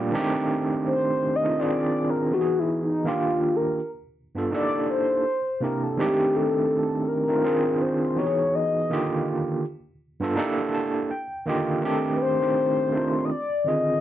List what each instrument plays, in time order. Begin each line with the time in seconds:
Already playing: tine electric piano A#2 G3 A3 A#3 D4 G4
0.12 tine electric piano D#3 G#3 C4 D4 D#4 G4
0.19 tine electric piano A3
0.86 soft synth lead C5
1.36 soft synth lead D#5
1.42 tine electric piano D#3 A3 C4 D4 D#4 F4
1.58 tine electric piano D#3 C4 D4 F4 G#4, soft synth lead D5
2.10 soft synth lead A#4
2.31 tine electric piano E3 B3 D#4 F#4 G4, soft synth lead F#4
2.41 tine electric piano G#4
2.59 soft synth lead E4
2.83 soft synth lead D#4
3.05 tine electric piano D#3 A#3 D4 F4 G4, soft synth lead F4
3.56 soft synth lead A#4
4.35 tine electric piano G2 B3 D4 F4 A4
4.51 tine electric piano A#3 D4 D#4 E4 G4 A4, soft synth lead D5
4.90 soft synth lead C5
5.60 tine electric piano C3 A#3 D4 E4 G4, soft synth lead A#4
5.83 soft synth lead A4
5.97 tine electric piano D#3 G#3 C4 D4 D#4 G4, soft synth lead G4
6.04 tine electric piano A3
6.36 soft synth lead A4
7.08 soft synth lead A#4
7.27 tine electric piano D#3 A3 C4 D4 D#4 F4
7.43 tine electric piano D#3 C4 D4 F4 G#4
7.82 soft synth lead C5
8.16 tine electric piano E3 B3 D#4 F#4 G4, soft synth lead C#5
8.26 tine electric piano G#4
8.55 soft synth lead D#5
8.90 tine electric piano D3 D#3 A#3 F4 G4
10.20 tine electric piano G2 B3 D4 F4 A4
10.36 tine electric piano A#3 D4 D#4 G4 A4
10.44 tine electric piano E4
10.74 tine electric piano A5
11.11 tine electric piano G5
11.46 tine electric piano D3 D#3 A#3 F4 G4 D#5
11.82 tine electric piano D#3 A3 C4 D4 D#4 G4, soft synth lead A4
12.15 soft synth lead B4
12.22 soft synth lead C5
12.39 tine electric piano D#3 A3 C4 D4 D#4 G4
12.92 tine electric piano D#3 A3 C4 D4 D#4 F4
13.25 soft synth lead D#5
13.31 soft synth lead D5
13.65 tine electric piano D3 D#3 C4 F4 G#4, soft synth lead D#5